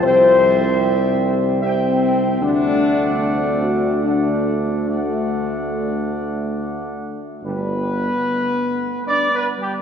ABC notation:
X:1
M:3/4
L:1/16
Q:1/4=74
K:G
V:1 name="Trumpet section"
[eg]8 [eg]4 | [df]8 [df]4 | [df]8- [df]2 z2 | B8 (3d2 B2 G2 |]
V:2 name="French horn section"
c8 C4 | D6 F2 D3 D | A,8 z4 | B,8 (3D2 B,2 G,2 |]
V:3 name="Trombone section" clef=bass
[G,C]8 [G,C]4 | [D,A,]8 [D,A,]4 | [D,A,]8- [D,A,]2 z2 | [D,G,]2 z8 z2 |]
V:4 name="Tuba" clef=bass
C,,12 | D,,12- | D,,8- D,,2 z2 | G,,,4 z8 |]